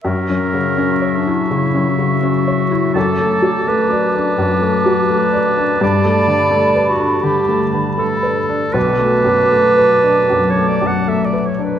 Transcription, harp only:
\new Staff \with { instrumentName = "Harp" } { \time 4/4 \key fis \phrygian \tempo 4 = 83 \tuplet 3/2 { fis,8 fis8 cis''8 fis'8 e''8 fis'8 cis8 fis8 cis''8 fis'8 e''8 fis'8 } | \tuplet 3/2 { fis,8 a8 d''8 a'8 d''8 a'8 fis,8 a8 d''8 a'8 d''8 a'8 } | \tuplet 3/2 { g,8 a8 b'8 a'8 d''8 a'8 d8 a8 b'8 a'8 d''8 a'8 } | \tuplet 3/2 { b,8 a8 b'8 a'4 a'8 fis8 a8 b'8 a'8 d''8 a'8 } | }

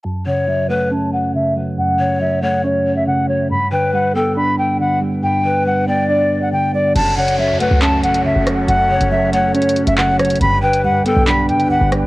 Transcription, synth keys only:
\new Staff \with { instrumentName = "Synth keys" } { \clef bass \time 4/4 \key fis \phrygian \tempo 4 = 139 fis,8 cis8 fis8 a8 cis'4 cis8 fis8 | fis,8 cis8 fis8 a8 cis'4 cis8 fis8 | g,8 d8 g8 b8 d'4 d8 g8 | g,8 d8 g8 b8 d'4 d8 g8 |
fis,8 cis8 fis8 a8 cis'4 cis8 fis8 | fis,8 cis8 fis8 a8 cis'4 cis8 fis8 | g,8 d8 g8 b8 d'4 d8 g8 | }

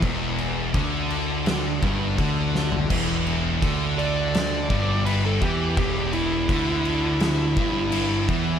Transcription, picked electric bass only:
\new Staff \with { instrumentName = "Picked electric bass" } { \clef bass \time 4/4 \key e \minor \tempo 4 = 84 e,,4 d,4. g,,8 d,4 | e,,4 d,4. g,,4 e,8 | e,,4 d,4. g,,4 e,8 | }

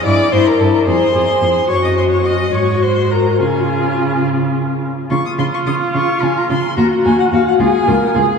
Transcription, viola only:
\new Staff \with { instrumentName = "Viola" } { \time 6/8 \key des \major \tempo 4. = 72 e'8 e'8 e'8 aes'8 aes'8 aes'8 | ges'4. ges'4. | f'2~ f'8 r8 | f'2. |
ges'4. aes'8 bes'8 aes'8 | }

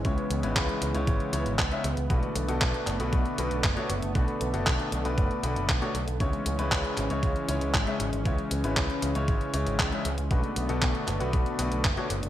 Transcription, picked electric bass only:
\new Staff \with { instrumentName = "Picked electric bass" } { \clef bass \time 4/4 \key cis \phrygian \tempo 4 = 117 cis,16 r16 cis,16 gis,,16 cis,16 r16 cis,16 cis,16 gis,,16 r16 cis,16 gis,,16 cis,16 r16 cis,16 cis,16 | b,,16 r16 b,,16 b,,16 b,,16 r16 fis,,16 b,,16 b,,16 r16 b,,16 b,,16 fis,,16 r16 fis,,16 fis,,16 | b,,16 r16 b,,16 fis,,16 b,,16 r16 b,,16 b,,16 fis,,16 r16 b,,16 fis,,16 b,,16 r16 b,,16 b,,16 | cis,16 r16 cis,16 cis,16 cis,16 r16 gis,,16 cis,16 cis,16 r16 cis,16 cis,16 gis,,16 r16 gis,,16 gis,,16 |
cis,16 r16 cis,16 gis,,16 cis,16 r16 cis,16 cis,16 gis,,16 r16 cis,16 gis,,16 cis,16 r16 cis,16 cis,16 | b,,16 r16 b,,16 b,,16 b,,16 r16 fis,,16 b,,16 b,,16 r16 b,,16 b,,16 fis,,16 r16 fis,,16 fis,,16 | }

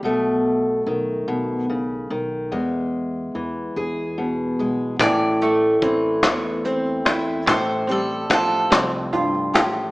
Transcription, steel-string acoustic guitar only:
\new Staff \with { instrumentName = "Steel-string acoustic guitar" } { \clef bass \time 6/8 \key a \minor \tempo 4. = 48 << { a2. | gis4. gis'4 gis8 | r8 a4. c'8 e'8 | r8 g2~ g8 | } \\ { b,4 dis8 b,8 cis8 dis8 | e,4 e4 b,4 | a,4 e8 e,4. | a,4 f8 f,8 g,8 a,8 | } >> }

